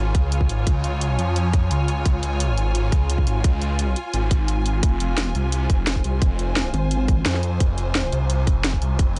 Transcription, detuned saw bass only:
0.00 0.13 G#1 loud
0.15 0.48 C#2 loud
0.49 0.65 G#1 loud
0.67 0.83 C#2 loud
0.84 1.17 C#2 loud
1.19 1.69 F2 loud
1.71 2.04 C#2 loud
2.06 2.21 C#2 medium
2.23 2.56 C#2 medium
2.58 2.91 G#1 loud
2.92 3.26 C#2 medium
3.27 3.43 G#1 loud
3.44 3.60 C#2 medium
3.62 3.95 C#2 loud
4.14 4.82 G#1 medium
4.83 4.99 F1 medium
5.00 5.34 F1 loud
5.35 5.68 C2 loud
5.70 6.03 F1 loud
6.04 6.20 C2 loud
6.22 6.38 F1 loud
6.39 6.72 F1 loud
7.26 7.59 F2 loud
7.60 7.76 F1 loud
7.78 8.11 F1 loud
8.12 8.46 C2 medium
8.47 8.80 F1 loud
8.82 8.98 C2 loud
8.99 9.15 F1 medium

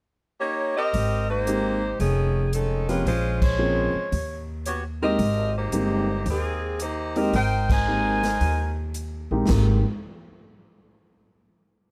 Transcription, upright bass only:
0.94 1.96 G#1 medium
2.00 3.02 F1 medium
3.06 3.91 A#1 medium
3.95 muted upright bass stroke soft
4.12 5.15 D#2 medium
5.19 5.69 G#1 medium
5.72 6.22 G1 medium
6.26 7.29 D#2 medium
7.33 8.37 G#1 medium
8.41 9.27 D#2 medium
9.31 9.47 A#1 medium
9.48 9.82 G#1 medium

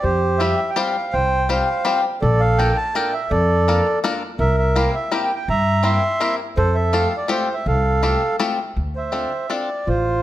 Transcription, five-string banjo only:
0.40 0.59 G3 medium
0.40 0.59 C4 medium
0.40 0.59 F4 medium
0.40 0.59 G4 medium
0.40 0.59 C5 medium
0.76 0.95 G3 medium
0.76 0.95 C4 medium
0.76 0.95 F4 medium
0.76 0.95 G4 medium
0.76 0.96 C5 medium
1.49 1.68 G3 medium
1.49 1.68 C4 medium
1.49 1.68 F4 medium
1.49 1.68 G4 medium
1.49 1.68 C5 medium
1.85 2.04 G3 medium
1.85 2.04 C4 medium
1.85 2.04 F4 medium
1.85 2.04 G4 medium
1.85 2.04 C5 medium
2.59 2.77 A#3 medium
2.59 2.77 D4 medium
2.59 2.77 F4 medium
2.59 2.77 A4 medium
2.59 2.77 A#4 medium
2.95 3.13 A#3 medium
2.95 3.13 D4 medium
2.95 3.13 F4 medium
2.95 3.14 A4 medium
2.95 3.14 A#4 medium
3.68 3.86 A#3 medium
3.68 3.86 D4 medium
3.68 3.86 F4 medium
3.68 3.86 A4 medium
3.68 3.86 A#4 medium
4.04 4.22 A#3 medium
4.04 4.22 D4 medium
4.04 4.22 F4 medium
4.04 4.22 A4 medium
4.04 4.22 A#4 loud
4.76 4.95 A#3 medium
4.76 4.94 C4 medium
4.76 4.95 E4 medium
4.76 4.95 G4 medium
4.76 4.95 A#4 medium
5.12 5.30 A#3 medium
5.12 5.30 C4 medium
5.12 5.30 E4 medium
5.12 5.30 G4 medium
5.12 5.30 A#4 medium
5.83 6.03 A#3 medium
5.83 6.02 C4 medium
5.83 6.02 E4 medium
5.83 6.02 G4 medium
5.83 6.02 A#4 medium
6.20 6.39 A#3 medium
6.20 6.39 C4 medium
6.20 6.39 E4 medium
6.20 6.39 G4 medium
6.20 6.39 A#4 medium
6.93 7.12 A3 medium
6.93 7.12 C4 medium
6.93 7.12 F4 medium
6.93 7.12 G4 medium
6.93 7.12 A4 medium
7.28 7.48 A3 medium
7.28 7.48 C4 medium
7.28 7.48 F4 medium
7.28 7.48 G4 medium
7.28 7.48 A4 medium
8.03 8.21 A3 medium
8.03 8.22 C4 medium
8.03 8.22 F4 medium
8.03 8.22 G4 medium
8.03 8.22 A4 medium
8.39 8.58 A3 medium
8.39 8.58 C4 medium
8.39 8.59 F4 medium
8.39 8.59 G4 medium
8.39 8.58 A4 medium
9.12 9.32 C4 medium
9.12 9.32 D4 medium
9.12 9.32 F4 medium
9.12 9.32 A4 medium
9.50 9.69 C4 medium
9.50 9.69 D4 medium
9.50 9.69 F4 medium
9.50 9.69 A4 medium

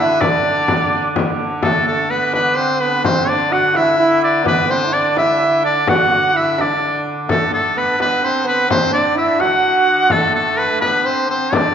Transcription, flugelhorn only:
0.00 0.22 E4 medium
0.23 1.12 D4 medium
1.64 1.86 A3 medium
1.86 2.11 A3 medium
2.10 2.34 B3 medium
2.34 2.59 B3 medium
2.57 2.83 C4 medium
2.81 3.06 B3 medium
3.05 3.31 C4 medium
3.30 3.53 D4 medium
3.52 3.76 F#4 medium
3.74 3.97 E4 medium
3.98 4.45 E4 loud
4.44 4.70 B3 medium
4.68 4.87 C4 medium
4.85 4.94 E4 medium
4.92 5.18 D4 medium
5.17 5.66 E4 medium
5.64 5.87 D4 medium
5.88 6.09 F#4 medium
6.10 6.36 F#4 medium
6.34 6.61 E4 medium
6.59 7.03 D4 medium
7.29 7.51 A3 medium
7.54 7.75 A3 medium
7.76 7.98 B3 medium
7.99 8.25 B3 medium
8.23 8.46 C4 medium
8.44 8.70 B3 medium
8.68 8.94 C4 medium
8.92 9.18 D4 medium
9.16 9.41 E4 medium
9.39 10.12 F#4 medium
10.10 10.83 A3 medium
10.81 11.06 B3 medium
11.05 11.28 C4 medium
11.28 11.55 C4 medium
11.53 11.74 D4 medium

